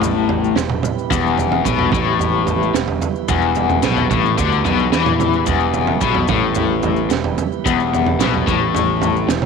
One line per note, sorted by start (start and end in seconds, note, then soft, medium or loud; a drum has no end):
0.00 0.52 A1 loud
0.00 0.56 A2 loud
0.00 9.46 G3 medium
0.00 9.46 B3 medium
0.00 9.46 E4 medium
0.00 9.46 G4 medium
0.00 9.46 B4 medium
0.00 floor tom medium
0.00 maracas loud
0.29 floor tom medium
0.44 maracas soft
0.56 0.82 E1 medium
0.56 0.79 E2 medium
0.56 snare medium
0.56 maracas loud
0.70 floor tom medium
0.70 mid tom medium
0.83 floor tom medium
0.83 mid tom medium
0.83 maracas medium
0.99 maracas soft
1.11 1.61 E1 medium
1.11 1.65 E2 loud
1.11 kick loud
1.11 floor tom medium
1.11 maracas loud
1.26 maracas soft
1.38 floor tom medium
1.38 maracas medium
1.52 floor tom medium
1.65 1.91 B1 medium
1.65 1.92 B2 medium
1.65 kick loud
1.65 mid tom medium
1.65 maracas loud
1.79 floor tom medium
1.92 2.70 A1 medium
1.92 2.74 A2 loud
1.92 kick loud
1.92 floor tom medium
1.92 mid tom medium
1.92 maracas medium
2.19 floor tom medium
2.19 maracas medium
2.47 floor tom medium
2.47 maracas medium
2.63 maracas soft
2.74 3.00 E1 medium
2.74 2.97 E2 medium
2.74 snare medium
2.74 maracas medium
2.88 floor tom medium
3.02 floor tom medium
3.02 maracas medium
3.15 maracas soft
3.28 3.80 E1 medium
3.28 3.83 E2 medium
3.28 kick loud
3.28 floor tom medium
3.28 maracas loud
3.42 maracas soft
3.55 floor tom medium
3.55 maracas medium
3.70 floor tom medium
3.70 maracas soft
3.82 4.08 B1 medium
3.82 4.10 B2 loud
3.82 snare medium
3.82 mid tom medium
3.82 maracas medium
3.97 floor tom medium
3.97 maracas soft
4.10 4.36 A1 loud
4.10 4.37 A2 medium
4.10 kick medium
4.10 floor tom medium
4.10 mid tom medium
4.10 maracas medium
4.26 maracas soft
4.38 4.63 D2 medium
4.38 4.64 D3 loud
4.38 kick loud
4.38 floor tom medium
4.38 maracas medium
4.52 maracas soft
4.64 4.90 B1 medium
4.64 4.91 B2 loud
4.64 floor tom medium
4.64 maracas medium
4.79 maracas soft
4.92 5.43 E2 medium
4.92 5.46 E3 loud
4.92 snare medium
4.92 maracas medium
5.06 floor tom medium
5.06 mid tom medium
5.06 maracas soft
5.20 floor tom medium
5.20 mid tom medium
5.20 maracas medium
5.33 maracas soft
5.46 5.98 E1 medium
5.46 6.00 E2 loud
5.46 kick loud
5.46 floor tom medium
5.46 maracas medium
5.60 maracas soft
5.74 floor tom medium
5.74 maracas medium
5.87 floor tom medium
6.01 6.27 B1 medium
6.01 6.28 B2 loud
6.01 kick loud
6.01 mid tom medium
6.01 maracas medium
6.15 floor tom medium
6.28 7.06 A1 medium
6.28 7.10 A2 medium
6.28 kick loud
6.28 floor tom medium
6.28 mid tom medium
6.28 maracas medium
6.55 floor tom medium
6.55 maracas medium
6.83 floor tom medium
6.83 maracas medium
6.96 maracas soft
7.10 7.36 E1 medium
7.10 7.32 E2 medium
7.10 snare medium
7.10 maracas medium
7.24 floor tom medium
7.38 floor tom medium
7.38 maracas medium
7.52 maracas soft
7.66 8.16 E1 medium
7.66 8.19 E2 loud
7.66 kick loud
7.66 floor tom medium
7.66 maracas loud
7.80 maracas soft
7.94 floor tom medium
7.94 maracas medium
8.06 floor tom medium
8.19 8.45 B1 medium
8.19 8.46 B2 loud
8.19 snare medium
8.19 mid tom medium
8.19 maracas loud
8.34 floor tom medium
8.47 9.25 A1 medium
8.47 9.28 A2 medium
8.47 kick loud
8.47 floor tom medium
8.47 mid tom medium
8.47 maracas medium
8.75 floor tom medium
8.75 maracas medium
9.02 floor tom medium
9.02 maracas medium
9.17 maracas soft
9.28 9.46 E1 medium
9.28 9.46 E2 medium
9.28 snare medium
9.28 maracas medium
9.42 floor tom medium
9.42 mid tom medium